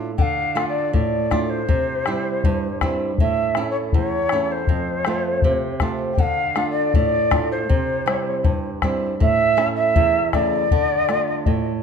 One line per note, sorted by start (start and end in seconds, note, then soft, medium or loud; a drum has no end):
0.00 0.15 A2 medium
0.17 0.91 D3 medium
0.17 0.64 F5 medium
0.17 0.22 G5 medium
0.17 bombo low medium
0.55 1.15 A3 soft
0.55 1.15 D4 soft
0.55 1.16 F4 medium
0.55 bombo rim soft
0.68 0.91 D5 medium
0.93 1.66 A2 medium
0.93 1.50 D5 medium
0.93 bombo low medium
1.31 1.61 A3 soft
1.31 1.61 D4 soft
1.31 1.61 F4 medium
1.31 bombo rim soft
1.31 bombo low soft
1.49 2.81 C5 medium
1.68 2.41 C3 medium
1.68 bombo low medium
2.06 2.66 G3 soft
2.06 2.67 C4 soft
2.06 2.67 E4 medium
2.06 bombo rim soft
2.44 3.17 G2 medium
2.44 bombo low medium
2.81 3.11 G3 medium
2.81 3.12 C4 soft
2.81 3.12 E4 medium
2.81 bombo rim soft
2.81 bombo low soft
3.18 3.92 A2 medium
3.18 3.66 E5 medium
3.18 bombo low medium
3.55 4.16 A3 soft
3.55 4.17 C#4 soft
3.55 4.17 E4 medium
3.55 bombo rim medium
3.70 3.76 C#5 medium
3.93 4.67 E2 medium
3.93 4.06 C5 medium
3.93 bombo low medium
4.06 4.52 C#5 medium
4.29 4.62 A3 medium
4.29 4.62 C#4 soft
4.29 4.62 E4 medium
4.29 bombo rim soft
4.51 5.82 C5 medium
4.67 5.42 F2 medium
4.67 bombo low medium
5.05 5.66 A3 soft
5.05 5.67 C4 soft
5.05 5.67 F4 medium
5.05 bombo rim medium
5.42 6.17 C3 medium
5.42 bombo low medium
5.80 6.11 A3 soft
5.80 6.11 C4 soft
5.80 6.12 F4 medium
5.80 bombo rim soft
5.80 bombo low soft
6.13 6.21 G5 medium
6.17 6.92 D3 medium
6.17 6.69 F5 medium
6.17 bombo low medium
6.56 7.16 A3 soft
6.56 7.17 D4 soft
6.56 7.17 F4 medium
6.56 bombo rim soft
6.70 6.93 D5 medium
6.94 7.67 A2 medium
6.94 7.47 D5 medium
6.94 bombo low medium
7.31 7.61 A3 soft
7.31 7.62 D4 soft
7.31 7.62 F4 medium
7.31 bombo rim medium
7.31 bombo low medium
7.51 8.78 C5 medium
7.69 8.42 C3 medium
7.69 bombo low medium
8.06 8.67 G3 medium
8.06 8.67 C4 soft
8.06 8.67 E4 medium
8.06 bombo rim medium
8.44 9.18 G2 medium
8.44 bombo low medium
8.82 9.13 G3 medium
8.82 9.13 C4 soft
8.82 9.13 E4 medium
8.82 bombo rim medium
8.82 bombo low soft
9.20 9.93 A2 medium
9.20 9.67 E5 loud
9.20 bombo low medium
9.57 10.18 A3 medium
9.57 10.18 C#4 soft
9.57 10.18 E4 medium
9.57 bombo rim medium
9.76 10.28 E5 loud
9.96 10.69 E2 medium
9.96 bombo low medium
10.32 10.64 C#3 soft
10.32 10.63 A3 medium
10.32 10.64 E4 medium
10.32 11.79 D5 medium
10.32 bombo rim soft
10.32 bombo low soft
10.71 11.44 D3 medium
10.71 bombo low medium
11.09 11.69 A3 soft
11.09 11.69 D4 soft
11.09 11.69 F4 medium
11.09 bombo rim soft
11.46 11.83 A2 medium
11.46 bombo low medium